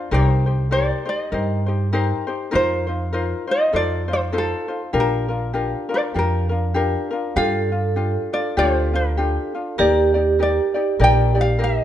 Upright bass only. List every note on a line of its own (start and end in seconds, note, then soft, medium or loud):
0.12 0.90 C2 medium
1.32 2.11 G2 medium
2.54 3.32 F2 medium
3.74 4.52 F2 medium
4.94 5.73 A#1 medium
6.15 6.94 F2 medium
7.36 8.15 G2 medium
8.57 9.36 D2 medium
9.79 10.58 D#2 medium
10.99 11.78 A#1 medium